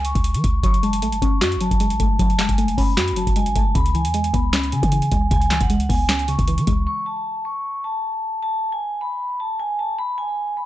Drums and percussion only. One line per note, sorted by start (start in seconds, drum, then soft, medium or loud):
0.05 closed hi-hat medium
0.15 kick medium
0.15 closed hi-hat medium
0.24 closed hi-hat medium
0.34 closed hi-hat medium
0.44 kick loud
0.44 closed hi-hat medium
0.63 kick loud
0.63 closed hi-hat medium
0.74 closed hi-hat soft
0.83 closed hi-hat medium
0.93 closed hi-hat medium
1.02 closed hi-hat medium
1.12 closed hi-hat medium
1.22 kick medium
1.22 closed hi-hat medium
1.41 snare loud
1.41 clap loud
1.41 closed hi-hat medium
1.52 closed hi-hat medium
1.61 closed hi-hat medium
1.71 kick medium
1.71 closed hi-hat medium
1.80 closed hi-hat medium
1.90 closed hi-hat medium
2.00 kick loud
2.00 closed hi-hat medium
2.19 kick loud
2.19 closed hi-hat medium
2.30 closed hi-hat soft
2.39 snare loud
2.39 clap medium
2.39 closed hi-hat medium
2.49 kick loud
2.49 closed hi-hat medium
2.58 closed hi-hat medium
2.68 closed hi-hat medium
2.78 kick medium
2.78 open hi-hat medium
2.97 snare loud
2.97 clap loud
2.97 closed hi-hat medium
3.08 closed hi-hat medium
3.16 closed hi-hat medium
3.27 kick medium
3.27 closed hi-hat medium
3.36 closed hi-hat medium
3.46 closed hi-hat medium
3.56 kick loud
3.56 closed hi-hat medium
3.75 kick loud
3.75 closed hi-hat medium
3.86 closed hi-hat soft
3.95 closed hi-hat medium
4.05 closed hi-hat medium
4.14 closed hi-hat medium
4.24 closed hi-hat medium
4.34 kick medium
4.34 closed hi-hat medium
4.53 snare loud
4.53 clap loud
4.53 closed hi-hat medium
4.64 closed hi-hat medium
4.72 closed hi-hat medium
4.83 kick loud
4.83 closed hi-hat medium
4.92 closed hi-hat medium
5.02 closed hi-hat medium
5.12 kick loud
5.12 closed hi-hat medium
5.31 kick loud
5.31 closed hi-hat medium
5.42 closed hi-hat soft
5.50 snare loud
5.50 clap medium
5.50 closed hi-hat medium
5.61 kick loud
5.61 closed hi-hat medium
5.70 closed hi-hat medium
5.80 closed hi-hat medium
5.90 kick medium
5.90 open hi-hat medium
6.09 snare loud
6.09 clap medium
6.09 closed hi-hat medium
6.19 closed hi-hat medium
6.28 closed hi-hat medium
6.39 kick medium
6.39 closed hi-hat medium
6.48 closed hi-hat medium
6.58 closed hi-hat medium
6.67 kick loud
6.67 closed hi-hat medium